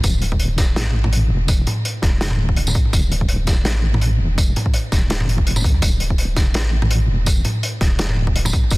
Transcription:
0.04 wobble bass D1, kick, closed hi-hat, tambourine
0.22 closed hi-hat
0.32 kick
0.40 closed hi-hat
0.58 wobble bass D1, kick, snare, closed hi-hat, tambourine
0.76 wobble bass A1, snare, closed hi-hat
1.04 mid tom
1.13 closed hi-hat
1.30 wobble bass E1
1.48 kick, closed hi-hat, tambourine
1.67 closed hi-hat, mid tom
1.85 closed hi-hat
2.02 wobble bass D1, kick, snare, closed hi-hat
2.21 wobble bass E1, snare, closed hi-hat
2.31 mid tom
2.39 wobble bass D1
2.49 kick
2.56 closed hi-hat
2.67 mid tom, tambourine
2.75 kick, closed hi-hat
2.85 mid tom
2.93 wobble bass D1, kick, closed hi-hat, tambourine
3.12 closed hi-hat
3.21 kick
3.29 closed hi-hat
3.47 wobble bass D1, kick, snare, closed hi-hat, tambourine
3.65 wobble bass A1, snare, closed hi-hat
3.94 mid tom
4.01 closed hi-hat
4.20 wobble bass E1
4.38 kick, closed hi-hat, tambourine
4.56 closed hi-hat, mid tom
4.66 kick
4.74 closed hi-hat
4.92 wobble bass D1, kick, snare, closed hi-hat, tambourine
5.10 snare, closed hi-hat
5.20 wobble bass F1, mid tom
5.29 closed hi-hat
5.38 kick
5.47 closed hi-hat
5.56 mid tom, tambourine
5.64 wobble bass D2, kick, closed hi-hat
5.74 mid tom
5.82 wobble bass D1, kick, closed hi-hat, tambourine
6.00 closed hi-hat
6.10 kick
6.18 closed hi-hat
6.36 wobble bass D1, kick, snare, closed hi-hat, tambourine
6.54 wobble bass A1, snare, closed hi-hat
6.82 mid tom
6.91 closed hi-hat
7.09 wobble bass E1
7.26 kick, closed hi-hat, tambourine
7.45 closed hi-hat, mid tom
7.63 closed hi-hat
7.81 wobble bass D1, kick, snare, closed hi-hat
7.99 wobble bass E1, snare, closed hi-hat
8.09 mid tom
8.17 wobble bass D1
8.27 kick
8.36 closed hi-hat
8.45 mid tom, tambourine
8.53 kick, closed hi-hat
8.64 mid tom
8.70 wobble bass D1, kick, closed hi-hat, tambourine

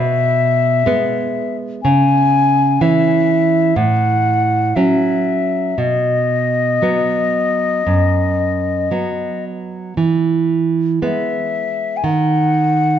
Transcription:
Already playing: nylon-string guitar B2, flute E5
0.86 nylon-string guitar G#3 B3
1.83 nylon-string guitar C#3, flute G#5
2.81 nylon-string guitar E3 C#4, flute E5
3.76 nylon-string guitar A2, flute F#5
4.75 nylon-string guitar F#3 C#4, flute E5
5.78 nylon-string guitar B2, flute D#5
6.82 nylon-string guitar F#3 B3
7.87 nylon-string guitar F#2
8.91 nylon-string guitar F#3 B3
9.97 nylon-string guitar E3
11.02 nylon-string guitar G#3 B3, flute E5
11.97 flute G#5
12.04 nylon-string guitar D#3, flute F#5

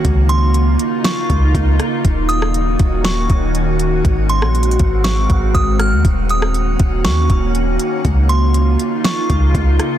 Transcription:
Already playing: ambient pad A#3, synth texture D#4
0.04 808-style bass C#2, ambient pad C#3 D#4 F4, synth texture A#4 F5, kick, closed hi-hat
0.29 synth bell C6, closed hi-hat
0.54 closed hi-hat
0.79 closed hi-hat
1.04 synth bell C#6, snare, closed hi-hat
1.30 808-style bass C#2, kick, closed hi-hat
1.55 808-style bass C#2, kick, closed hi-hat
1.79 cross-stick, closed hi-hat
2.05 808-style bass D#1, ambient pad D#3 C#4 F#4, synth texture C#5 F#5, kick, closed hi-hat
2.29 synth bell D#6, closed hi-hat
2.42 cross-stick
2.54 closed hi-hat
2.79 808-style bass D#1, kick, closed hi-hat
3.04 synth bell C#6, snare, closed hi-hat
3.30 808-style bass D#1, kick, closed hi-hat
3.55 closed hi-hat
3.79 closed hi-hat
4.05 808-style bass G#1, ambient pad G#3 C4, synth texture C4 A#4 F5, kick, closed hi-hat
4.29 synth bell C6, closed hi-hat
4.42 808-style bass A#1, cross-stick
4.55 closed hi-hat
4.63 closed hi-hat
4.71 closed hi-hat
4.79 808-style bass G#1, kick, closed hi-hat
5.04 synth bell C#6, snare, closed hi-hat
5.30 808-style bass G#1, kick, closed hi-hat
5.55 808-style bass G#1, synth bell D#6, kick, closed hi-hat
5.79 synth bell F6, cross-stick, closed hi-hat
5.92 808-style bass D#2
6.05 808-style bass D#1, ambient pad D#3 A#3 C#4 F#4, synth texture D#4 C#5, kick, closed hi-hat
6.29 synth bell D#6, closed hi-hat
6.42 cross-stick
6.54 closed hi-hat
6.79 808-style bass D#1, kick, closed hi-hat
7.05 808-style bass D#2, synth bell C#6, snare, closed hi-hat
7.30 808-style bass D#1, kick, closed hi-hat
7.55 closed hi-hat
7.80 closed hi-hat
8.05 808-style bass C#2, ambient pad C#3 D#4 F4, synth texture A#4 F5, kick, closed hi-hat
8.29 synth bell C6, closed hi-hat
8.54 closed hi-hat
8.79 closed hi-hat
9.04 synth bell C#6, snare, closed hi-hat
9.30 808-style bass C#2, kick, closed hi-hat
9.55 808-style bass C#2, kick, closed hi-hat
9.79 cross-stick, closed hi-hat

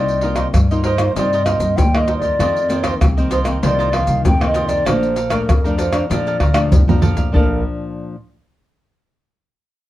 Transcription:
Already playing: upright bass C2, nylon-string guitar C3 A#3 D#4 F4, cavaquinho D#4 A#4 C5 D#5, flute D5
0.08 pandeiro, maracas
0.21 nylon-string guitar A#3 D#4 F4, cavaquinho D#4 A#4 C5 D#5, pandeiro
0.36 cavaquinho D#4 A#4 C5 D#5, pandeiro, tamborim, maracas, surdo
0.54 upright bass G2, nylon-string guitar G2, pandeiro, tamborim, maracas, surdo
0.71 nylon-string guitar A#3 D#4 F4, cavaquinho A#4 C5 D#5, pandeiro, maracas
0.84 cavaquinho D#4 A#4 C5 D#5, flute C5, pandeiro
0.98 nylon-string guitar A#3 D#4 F4, cavaquinho A#4 C5 D#5, pandeiro, tamborim, maracas
1.16 upright bass G2, nylon-string guitar C3 A#3 D#4 F4, cavaquinho D#4 A#4 C5 D#5, flute D5, pandeiro, maracas, surdo
1.33 cavaquinho D#4 A#4 C5 D#5, pandeiro, maracas
1.44 nylon-string guitar A#3 D#4 F4, cavaquinho D#4 A#4 C5 D#5, flute D#5, pandeiro, tamborim, maracas, surdo
1.59 upright bass G2, pandeiro, maracas, surdo
1.77 upright bass D#2, nylon-string guitar G2, flute G5, pandeiro, maracas, surdo
1.95 nylon-string guitar A#3 D#4 F4, cavaquinho A#4 C5 D#5, flute D#5, pandeiro, tamborim, maracas
2.08 cavaquinho D#4 A#4 C5 D#5, pandeiro, maracas
2.18 flute D5, cavaquinho D#5, pandeiro, maracas, surdo
2.23 cavaquinho A#4 C5
2.39 upright bass F2, nylon-string guitar F2 D#3 A#3 C4, cavaquinho F4 A#4 C5 D#5, pandeiro, tamborim, maracas, surdo
2.56 pandeiro, maracas
2.68 nylon-string guitar D#3 A#3 C4, cavaquinho F4 A#4 C5 D#5, pandeiro, maracas
2.83 cavaquinho F4 A#4 C5 D#5, pandeiro, tamborim, maracas, surdo
3.01 upright bass C2, nylon-string guitar C3, pandeiro, tamborim, maracas, surdo
3.17 nylon-string guitar D#3 A#3 C4, cavaquinho A#4 C5 D#5, pandeiro, maracas
3.31 cavaquinho F4 A#4 C5 D#5, flute C5, pandeiro, maracas
3.44 nylon-string guitar D#3 A#3 C4, cavaquinho A#4 C5 D#5, pandeiro, tamborim, maracas
3.62 upright bass C2, nylon-string guitar F2 D#3 A#3 C4, cavaquinho F4 A#4 C5 D#5, flute D5, pandeiro, maracas, surdo
3.79 cavaquinho F4 A#4 C5 D#5, pandeiro, maracas
3.92 nylon-string guitar D#3 A#3 C4, cavaquinho F4 A#4 C5 D#5, flute F5, pandeiro, tamborim, surdo
4.07 upright bass C2, pandeiro, maracas, surdo
4.25 upright bass F2, nylon-string guitar C3, flute G5, pandeiro, maracas, surdo
4.40 nylon-string guitar D#3 A#3 C4, cavaquinho A#4 C5 D#5, pandeiro, tamborim, maracas
4.46 flute D#5
4.54 cavaquinho F4 A#4 C5 D#5, pandeiro, maracas
4.67 cavaquinho A#4 C5 D#5, flute D5, pandeiro, maracas, surdo
4.85 upright bass A#1, nylon-string guitar A#2 F3 A3 D4, cavaquinho A4 D5 F5 A#5, flute C5, pandeiro, tamborim, maracas, surdo
5.03 pandeiro, maracas
5.16 cavaquinho A4 D5 F5 A#5, pandeiro, maracas
5.30 nylon-string guitar F3 A3 D4, cavaquinho A4 D5 F5 A#5, flute A#4, pandeiro, tamborim, maracas, surdo
5.49 upright bass F2, nylon-string guitar F2, pandeiro, tamborim, maracas, surdo
5.64 nylon-string guitar F3 A3 D4, cavaquinho D5 F5 A#5, pandeiro, maracas
5.78 cavaquinho A4 D5 F5 A#5, flute C5, pandeiro, maracas
5.92 nylon-string guitar F3 A3 D4, cavaquinho D5 F5 A#5, pandeiro, tamborim, maracas
6.09 upright bass F2, nylon-string guitar A#2 F3 A3 D4, cavaquinho A4 D5 F5 A#5, flute D5, pandeiro, maracas, surdo
6.27 cavaquinho A4 D5 F5 A#5, pandeiro, maracas
6.40 upright bass D2, cavaquinho D5 F5 A#5, pandeiro, tamborim, surdo
6.54 nylon-string guitar F3 A3 D4, pandeiro, tamborim, maracas, surdo
6.71 upright bass C2, nylon-string guitar F2, surdo, pandeiro, maracas
6.88 nylon-string guitar F3 A3 D4, cavaquinho D5 F5 A#5, surdo, pandeiro, maracas
7.01 upright bass A#1, cavaquinho A4 D5 F5 A#5, surdo, pandeiro
7.17 cavaquinho D5 F5 A#5, pandeiro, maracas, surdo
7.32 upright bass A#1, nylon-string guitar A#2 F3 D4, cavaquinho A4 D5 F5, flute A#4, surdo
7.36 cavaquinho A#5

